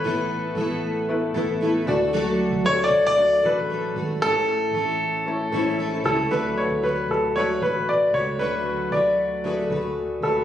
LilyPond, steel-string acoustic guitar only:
\new Staff \with { instrumentName = "Steel-string acoustic guitar" } { \time 4/4 \key d \lydian \tempo 4 = 115 <a b e' a'>4 <a b e' a'>4. <b e' a'>8 <a b e' a'>8 <a fis' a'>8 | <d fis a fis' a'>4 <fis a fis' a'>4. <a fis' a'>8 <fis a fis' a'>8 <a fis' a'>8 | <a, e a cis' e' a'>4 <a cis' e' a'>4. <a cis' e' a'>8 <a cis' e' a'>8 <a cis' e' a'>8 | <d fis a fis' b'>4 <fis a fis' b'>4 <d fis a fis' b'>8 <a fis' b'>4 <a fis' b'>8 |
<d fis a fis' b'>4 <fis a fis' b'>4 <d fis a fis' b'>8 <a fis' b'>4 <a fis' b'>8 | }